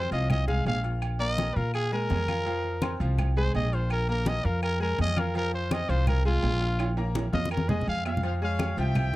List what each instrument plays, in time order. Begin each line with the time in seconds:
Already playing: trumpet C5
0.11 upright bass C2, grand piano F3 F4 F5, trumpet D#5, high conga, low agogo
0.30 trumpet D#5, high conga, low conga, low agogo, claves
0.48 grand piano G#3 G#4 G#5, trumpet F5, high conga, low conga
0.66 upright bass A#1, trumpet F5, high conga, low timbale, low agogo
0.84 grand piano F4 F5 F6, low agogo
1.02 high conga, low agogo, claves
1.19 grand piano A#3 A#4 A#5, trumpet D#5, high conga
1.38 high conga, low timbale, low agogo
1.56 upright bass A#2, grand piano F4 F5 F6, trumpet A#4, high conga
1.74 trumpet G#4, high conga, low agogo, claves
1.92 grand piano G#3 G#4 G#5, trumpet A#4, high conga
2.10 upright bass F2, high conga, low timbale, low agogo
2.28 grand piano F4 F5 F6, high conga, low agogo, claves
2.46 grand piano F3 F4 F5, high conga, low agogo
2.64 high conga
2.82 grand piano C4 C5 C6, high conga, low timbale, low agogo, claves
3.00 upright bass C2, grand piano F3 F4 F5, high conga, low agogo
3.18 high conga, low conga, low agogo, claves
3.37 grand piano G#3 G#4 G#5, trumpet C5, high conga
3.54 upright bass A#1, trumpet D#5, high conga, low timbale, low agogo
3.72 grand piano F4 F5 F6, trumpet C5, low agogo
3.90 trumpet A#4, high conga, low agogo, claves
4.09 grand piano A#3 A#4 A#5, trumpet A#4, high conga
4.26 trumpet D#5, high conga, low timbale, low agogo
4.44 upright bass F2, grand piano F4 F5 F6, trumpet A#4, high conga
4.62 trumpet A#4, high conga, low agogo, claves
4.80 grand piano G#3 G#4 G#5, trumpet A#4, high conga
4.98 upright bass F2, trumpet D#5, high conga, low timbale, low agogo
5.16 grand piano F4 F5 F6, trumpet A#4, high conga, low agogo, claves
5.34 grand piano F3 F4 F5, trumpet A#4, high conga, low agogo
5.53 trumpet C5, high conga
5.71 grand piano C4 C5 C6, trumpet D#5, high conga, low timbale, low agogo, claves
5.89 upright bass C2, grand piano F3 F4 F5, trumpet C5, high conga, low agogo
6.07 trumpet A#4, high conga, low conga, low agogo, claves
6.25 grand piano G#3 G#4 G#5, trumpet F4, high conga
6.43 upright bass A#1, high conga, low timbale, low agogo
6.61 grand piano F4 F5 F6, low agogo
6.79 high conga, high timbale, low agogo, claves
6.97 grand piano A#3 A#4 A#5, high conga, high timbale
7.15 high conga, high timbale, low agogo
7.33 upright bass F2, grand piano F4 F5 F6, trumpet D#5, high conga, low timbale
7.45 high conga
7.51 trumpet A#4, low agogo, claves
7.57 high conga
7.69 grand piano G#3 G#4 G#5, trumpet D#5, low conga, low timbale
7.81 low conga
7.87 upright bass F2, trumpet F5, low agogo
8.05 grand piano F4 F5 F6, trumpet F5, low timbale, low agogo, claves
8.17 low conga
8.23 grand piano F3 F4 F5, trumpet section C5 F5, high conga, low agogo
8.42 grand piano G#3 G#4 G#5, trumpet section C#5 F5, high conga
8.59 high conga, low timbale, low agogo, claves
8.77 upright bass C2, grand piano F3 F4 G5, trumpet section E5 G5, high conga, low agogo
8.95 high conga, low conga, low agogo, claves